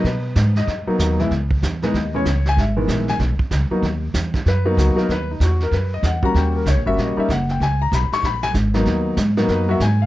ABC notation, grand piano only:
X:1
M:4/4
L:1/8
Q:"Swing" 1/4=191
K:C#dor
V:1 name="Grand piano"
B3 d z4 | z3 d2 c2 g | e3 g z4 | z4 B z F A |
B D F A B d f a | =g A c e d e f g | g a b c' b g z2 | z4 [AB] e g ^e |]
V:2 name="Grand piano"
z4 z [F,A,B,D]2 [E,G,B,E] | z3 [E,G,B,D] z [E,G,B,C] z2 | z [D,E,G,B,]3 z3 [F,A,B,D] | z4 z [F,A,B,D]2 [F,A,B,D] |
z6 z [=G,A,CF]- | [=G,A,CF]2 z [G,A,CF]2 [G,A,CD] z2 | z6 z [F,A,B,D]- | [F,A,B,D]2 z [F,A,B,D]2 [F,A,B,F] z2 |]